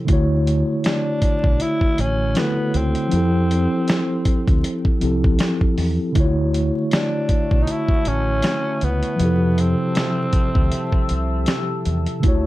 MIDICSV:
0, 0, Header, 1, 7, 480
1, 0, Start_track
1, 0, Tempo, 759494
1, 54, Time_signature, 4, 2, 24, 8
1, 7878, End_track
2, 0, Start_track
2, 0, Title_t, "Ambient pad"
2, 0, Program_c, 0, 92
2, 3890, Note_on_c, 0, 66, 75
2, 3890, Note_on_c, 0, 76, 70
2, 3890, Note_on_c, 0, 81, 91
2, 3891, Note_on_c, 0, 85, 80
2, 5792, Note_off_c, 0, 81, 0
2, 5793, Note_off_c, 0, 66, 0
2, 5793, Note_off_c, 0, 76, 0
2, 5793, Note_off_c, 0, 85, 0
2, 5807, Note_on_c, 0, 76, 71
2, 5808, Note_on_c, 0, 67, 82
2, 5808, Note_on_c, 0, 81, 77
2, 5808, Note_on_c, 0, 88, 81
2, 7711, Note_off_c, 0, 76, 0
2, 7711, Note_off_c, 0, 88, 0
2, 7712, Note_off_c, 0, 67, 0
2, 7712, Note_off_c, 0, 81, 0
2, 7732, Note_on_c, 0, 66, 79
2, 7734, Note_on_c, 0, 76, 69
2, 7734, Note_on_c, 0, 81, 91
2, 7734, Note_on_c, 0, 85, 73
2, 7878, Note_off_c, 0, 66, 0
2, 7878, Note_off_c, 0, 76, 0
2, 7878, Note_off_c, 0, 81, 0
2, 7878, Note_off_c, 0, 85, 0
2, 7878, End_track
3, 0, Start_track
3, 0, Title_t, "Tine electric piano"
3, 0, Program_c, 1, 4
3, 0, Control_c, 1, 64, 127
3, 31, Note_on_c, 1, 50, 76
3, 41, Note_on_c, 1, 57, 69
3, 55, Note_on_c, 1, 64, 66
3, 62, Control_c, 1, 64, 0
3, 66, Note_on_c, 1, 66, 68
3, 79, Note_on_c, 1, 73, 84
3, 156, Control_c, 1, 64, 127
3, 1457, Note_off_c, 1, 50, 0
3, 1462, Note_off_c, 1, 57, 0
3, 1469, Note_off_c, 1, 64, 0
3, 1475, Note_off_c, 1, 66, 0
3, 1480, Note_on_c, 1, 50, 47
3, 1481, Note_off_c, 1, 73, 0
3, 1485, Note_on_c, 1, 57, 48
3, 1490, Note_on_c, 1, 64, 43
3, 1499, Note_on_c, 1, 66, 43
3, 1505, Note_on_c, 1, 69, 59
3, 1946, Note_on_c, 1, 53, 61
3, 1959, Note_on_c, 1, 60, 60
3, 1962, Note_off_c, 1, 64, 0
3, 1967, Note_off_c, 1, 50, 0
3, 1969, Note_off_c, 1, 57, 0
3, 1970, Note_on_c, 1, 64, 62
3, 1976, Note_off_c, 1, 66, 0
3, 1979, Note_off_c, 1, 69, 0
3, 1982, Control_c, 1, 64, 0
3, 1985, Note_on_c, 1, 67, 57
3, 1997, Note_on_c, 1, 69, 69
3, 2111, Control_c, 1, 64, 127
3, 3135, Note_off_c, 1, 53, 0
3, 3142, Note_off_c, 1, 60, 0
3, 3148, Note_off_c, 1, 64, 0
3, 3155, Note_off_c, 1, 67, 0
3, 3162, Note_off_c, 1, 69, 0
3, 3162, Note_on_c, 1, 53, 52
3, 3168, Note_on_c, 1, 60, 49
3, 3173, Note_on_c, 1, 64, 47
3, 3179, Note_on_c, 1, 67, 49
3, 3186, Note_on_c, 1, 69, 61
3, 3870, Note_on_c, 1, 50, 73
3, 3884, Note_on_c, 1, 57, 69
3, 3888, Note_off_c, 1, 53, 0
3, 3888, Note_off_c, 1, 64, 0
3, 3891, Note_off_c, 1, 60, 0
3, 3896, Note_on_c, 1, 64, 67
3, 3897, Note_off_c, 1, 67, 0
3, 3900, Note_off_c, 1, 69, 0
3, 3901, Control_c, 1, 64, 0
3, 3909, Note_on_c, 1, 65, 55
3, 3919, Note_on_c, 1, 73, 79
3, 3948, Note_off_c, 1, 65, 0
3, 3949, Note_on_c, 1, 66, 69
3, 4023, Control_c, 1, 64, 127
3, 5776, Note_off_c, 1, 50, 0
3, 5784, Note_off_c, 1, 57, 0
3, 5789, Note_off_c, 1, 64, 0
3, 5790, Note_on_c, 1, 53, 62
3, 5801, Note_off_c, 1, 73, 0
3, 5802, Note_on_c, 1, 48, 55
3, 5816, Note_off_c, 1, 66, 0
3, 5816, Note_on_c, 1, 64, 53
3, 5820, Control_c, 1, 64, 0
3, 5829, Note_on_c, 1, 67, 55
3, 5841, Note_on_c, 1, 69, 69
3, 5950, Control_c, 1, 64, 127
3, 7697, Note_off_c, 1, 53, 0
3, 7702, Note_off_c, 1, 48, 0
3, 7709, Note_off_c, 1, 64, 0
3, 7711, Note_on_c, 1, 50, 72
3, 7716, Note_off_c, 1, 67, 0
3, 7722, Note_off_c, 1, 69, 0
3, 7723, Note_on_c, 1, 57, 66
3, 7737, Note_on_c, 1, 64, 66
3, 7742, Control_c, 1, 64, 0
3, 7749, Note_on_c, 1, 66, 72
3, 7761, Note_on_c, 1, 73, 82
3, 7867, Control_c, 1, 64, 127
3, 7878, Note_off_c, 1, 50, 0
3, 7878, Note_off_c, 1, 57, 0
3, 7878, Note_off_c, 1, 64, 0
3, 7878, Note_off_c, 1, 66, 0
3, 7878, Note_off_c, 1, 73, 0
3, 7878, End_track
4, 0, Start_track
4, 0, Title_t, "Tenor saxophone"
4, 0, Program_c, 2, 66
4, 549, Note_on_c, 2, 62, 92
4, 1021, Note_on_c, 2, 64, 108
4, 1031, Note_off_c, 2, 62, 0
4, 1267, Note_on_c, 2, 61, 101
4, 1277, Note_off_c, 2, 64, 0
4, 1499, Note_on_c, 2, 59, 94
4, 1509, Note_off_c, 2, 61, 0
4, 1746, Note_on_c, 2, 60, 93
4, 1756, Note_off_c, 2, 59, 0
4, 3180, Note_off_c, 2, 60, 0
4, 4386, Note_on_c, 2, 62, 91
4, 4820, Note_on_c, 2, 63, 79
4, 4829, Note_off_c, 2, 62, 0
4, 4873, Note_on_c, 2, 64, 110
4, 4882, Note_off_c, 2, 63, 0
4, 5106, Note_on_c, 2, 61, 117
4, 5115, Note_off_c, 2, 64, 0
4, 5588, Note_on_c, 2, 59, 94
4, 5597, Note_off_c, 2, 61, 0
4, 6067, Note_on_c, 2, 60, 94
4, 6077, Note_off_c, 2, 59, 0
4, 7500, Note_off_c, 2, 60, 0
4, 7878, End_track
5, 0, Start_track
5, 0, Title_t, "Fingered electric bass"
5, 0, Program_c, 3, 33
5, 55, Note_on_c, 3, 38, 94
5, 391, Note_off_c, 3, 38, 0
5, 910, Note_on_c, 3, 35, 82
5, 1003, Note_off_c, 3, 35, 0
5, 1256, Note_on_c, 3, 33, 85
5, 1470, Note_off_c, 3, 33, 0
5, 1735, Note_on_c, 3, 37, 84
5, 1856, Note_off_c, 3, 37, 0
5, 1977, Note_on_c, 3, 41, 89
5, 2312, Note_off_c, 3, 41, 0
5, 2830, Note_on_c, 3, 38, 78
5, 2923, Note_off_c, 3, 38, 0
5, 3176, Note_on_c, 3, 36, 88
5, 3390, Note_off_c, 3, 36, 0
5, 3654, Note_on_c, 3, 40, 91
5, 3776, Note_off_c, 3, 40, 0
5, 3893, Note_on_c, 3, 38, 101
5, 4230, Note_off_c, 3, 38, 0
5, 4748, Note_on_c, 3, 35, 81
5, 4842, Note_off_c, 3, 35, 0
5, 5097, Note_on_c, 3, 33, 89
5, 5310, Note_off_c, 3, 33, 0
5, 5577, Note_on_c, 3, 37, 83
5, 5697, Note_off_c, 3, 37, 0
5, 5815, Note_on_c, 3, 41, 103
5, 6151, Note_off_c, 3, 41, 0
5, 6669, Note_on_c, 3, 38, 88
5, 6762, Note_off_c, 3, 38, 0
5, 7019, Note_on_c, 3, 36, 82
5, 7232, Note_off_c, 3, 36, 0
5, 7499, Note_on_c, 3, 40, 99
5, 7619, Note_off_c, 3, 40, 0
5, 7737, Note_on_c, 3, 38, 93
5, 7878, Note_off_c, 3, 38, 0
5, 7878, End_track
6, 0, Start_track
6, 0, Title_t, "Muted fingered electric bass strokes"
6, 1146, Note_on_c, 9, 29, 49
6, 1209, Note_off_c, 9, 29, 0
6, 3066, Note_on_c, 9, 29, 48
6, 3129, Note_off_c, 9, 29, 0
6, 4985, Note_on_c, 9, 29, 49
6, 5048, Note_off_c, 9, 29, 0
6, 6905, Note_on_c, 9, 29, 50
6, 6968, Note_off_c, 9, 29, 0
6, 7878, End_track
7, 0, Start_track
7, 0, Title_t, "Drums"
7, 52, Note_on_c, 9, 42, 76
7, 55, Note_on_c, 9, 36, 107
7, 115, Note_off_c, 9, 42, 0
7, 118, Note_off_c, 9, 36, 0
7, 299, Note_on_c, 9, 42, 64
7, 362, Note_off_c, 9, 42, 0
7, 532, Note_on_c, 9, 42, 66
7, 544, Note_on_c, 9, 38, 102
7, 595, Note_off_c, 9, 42, 0
7, 607, Note_off_c, 9, 38, 0
7, 769, Note_on_c, 9, 42, 69
7, 770, Note_on_c, 9, 36, 90
7, 832, Note_off_c, 9, 42, 0
7, 833, Note_off_c, 9, 36, 0
7, 909, Note_on_c, 9, 36, 98
7, 972, Note_off_c, 9, 36, 0
7, 1010, Note_on_c, 9, 42, 82
7, 1073, Note_off_c, 9, 42, 0
7, 1145, Note_on_c, 9, 36, 81
7, 1208, Note_off_c, 9, 36, 0
7, 1252, Note_on_c, 9, 42, 65
7, 1315, Note_off_c, 9, 42, 0
7, 1486, Note_on_c, 9, 42, 71
7, 1496, Note_on_c, 9, 38, 100
7, 1549, Note_off_c, 9, 42, 0
7, 1560, Note_off_c, 9, 38, 0
7, 1733, Note_on_c, 9, 42, 59
7, 1796, Note_off_c, 9, 42, 0
7, 1864, Note_on_c, 9, 42, 31
7, 1927, Note_off_c, 9, 42, 0
7, 1968, Note_on_c, 9, 42, 74
7, 2032, Note_off_c, 9, 42, 0
7, 2218, Note_on_c, 9, 42, 63
7, 2281, Note_off_c, 9, 42, 0
7, 2450, Note_on_c, 9, 42, 63
7, 2462, Note_on_c, 9, 38, 104
7, 2514, Note_off_c, 9, 42, 0
7, 2525, Note_off_c, 9, 38, 0
7, 2688, Note_on_c, 9, 42, 74
7, 2689, Note_on_c, 9, 36, 92
7, 2751, Note_off_c, 9, 42, 0
7, 2752, Note_off_c, 9, 36, 0
7, 2829, Note_on_c, 9, 36, 103
7, 2833, Note_on_c, 9, 42, 33
7, 2892, Note_off_c, 9, 36, 0
7, 2896, Note_off_c, 9, 42, 0
7, 2933, Note_on_c, 9, 42, 80
7, 2996, Note_off_c, 9, 42, 0
7, 3065, Note_on_c, 9, 36, 89
7, 3128, Note_off_c, 9, 36, 0
7, 3168, Note_on_c, 9, 42, 62
7, 3231, Note_off_c, 9, 42, 0
7, 3313, Note_on_c, 9, 36, 92
7, 3376, Note_off_c, 9, 36, 0
7, 3405, Note_on_c, 9, 42, 76
7, 3415, Note_on_c, 9, 38, 104
7, 3468, Note_off_c, 9, 42, 0
7, 3478, Note_off_c, 9, 38, 0
7, 3547, Note_on_c, 9, 36, 83
7, 3610, Note_off_c, 9, 36, 0
7, 3651, Note_on_c, 9, 46, 41
7, 3714, Note_off_c, 9, 46, 0
7, 3889, Note_on_c, 9, 42, 72
7, 3892, Note_on_c, 9, 36, 102
7, 3952, Note_off_c, 9, 42, 0
7, 3955, Note_off_c, 9, 36, 0
7, 4136, Note_on_c, 9, 42, 67
7, 4199, Note_off_c, 9, 42, 0
7, 4369, Note_on_c, 9, 42, 63
7, 4381, Note_on_c, 9, 38, 111
7, 4432, Note_off_c, 9, 42, 0
7, 4444, Note_off_c, 9, 38, 0
7, 4607, Note_on_c, 9, 42, 69
7, 4608, Note_on_c, 9, 36, 90
7, 4670, Note_off_c, 9, 42, 0
7, 4671, Note_off_c, 9, 36, 0
7, 4748, Note_on_c, 9, 36, 99
7, 4811, Note_off_c, 9, 36, 0
7, 4850, Note_on_c, 9, 42, 78
7, 4913, Note_off_c, 9, 42, 0
7, 4984, Note_on_c, 9, 36, 86
7, 5047, Note_off_c, 9, 36, 0
7, 5089, Note_on_c, 9, 42, 67
7, 5152, Note_off_c, 9, 42, 0
7, 5324, Note_on_c, 9, 42, 77
7, 5334, Note_on_c, 9, 38, 96
7, 5387, Note_off_c, 9, 42, 0
7, 5397, Note_off_c, 9, 38, 0
7, 5570, Note_on_c, 9, 42, 51
7, 5633, Note_off_c, 9, 42, 0
7, 5704, Note_on_c, 9, 42, 32
7, 5768, Note_off_c, 9, 42, 0
7, 5811, Note_on_c, 9, 42, 79
7, 5875, Note_off_c, 9, 42, 0
7, 6054, Note_on_c, 9, 42, 62
7, 6117, Note_off_c, 9, 42, 0
7, 6290, Note_on_c, 9, 42, 66
7, 6301, Note_on_c, 9, 38, 95
7, 6353, Note_off_c, 9, 42, 0
7, 6365, Note_off_c, 9, 38, 0
7, 6526, Note_on_c, 9, 42, 76
7, 6529, Note_on_c, 9, 36, 97
7, 6590, Note_off_c, 9, 42, 0
7, 6592, Note_off_c, 9, 36, 0
7, 6668, Note_on_c, 9, 36, 97
7, 6732, Note_off_c, 9, 36, 0
7, 6772, Note_on_c, 9, 42, 75
7, 6836, Note_off_c, 9, 42, 0
7, 6904, Note_on_c, 9, 36, 83
7, 6967, Note_off_c, 9, 36, 0
7, 7008, Note_on_c, 9, 42, 67
7, 7072, Note_off_c, 9, 42, 0
7, 7244, Note_on_c, 9, 42, 77
7, 7255, Note_on_c, 9, 38, 104
7, 7308, Note_off_c, 9, 42, 0
7, 7318, Note_off_c, 9, 38, 0
7, 7492, Note_on_c, 9, 42, 54
7, 7555, Note_off_c, 9, 42, 0
7, 7625, Note_on_c, 9, 42, 34
7, 7688, Note_off_c, 9, 42, 0
7, 7730, Note_on_c, 9, 42, 69
7, 7735, Note_on_c, 9, 36, 111
7, 7794, Note_off_c, 9, 42, 0
7, 7798, Note_off_c, 9, 36, 0
7, 7878, End_track
0, 0, End_of_file